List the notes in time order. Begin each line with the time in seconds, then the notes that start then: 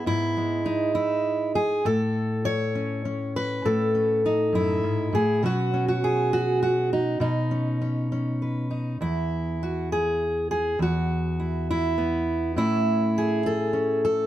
Already playing: B3
0.06 G#2 E4
0.37 G#3
0.66 D#4
0.95 E4
1.55 G#4
1.85 A2 A4
2.45 C#5
2.75 C#4
3.05 C#4
3.36 B4
3.65 A2 A4
3.95 C#4
4.26 D#4
4.52 F#2 E4
4.83 G#2
5.13 A2 G#4
5.43 B2 F#3 C#4 F#4
5.74 C#4
5.88 F#4
6.04 G#4
6.33 F#4
6.63 F#4
6.93 D#4
7.20 B2 D#4
7.51 C#4
7.82 C#4
8.12 C#4
8.42 B4
8.71 D#4
9.01 E2 E4
9.63 F#4
9.92 G#4
10.51 G#4
10.79 E2 F#4
11.40 E4
11.71 E4
11.98 B3
12.56 A2 A3 C#4 E4
13.18 G#4
13.46 A4
13.73 C#4
14.05 A4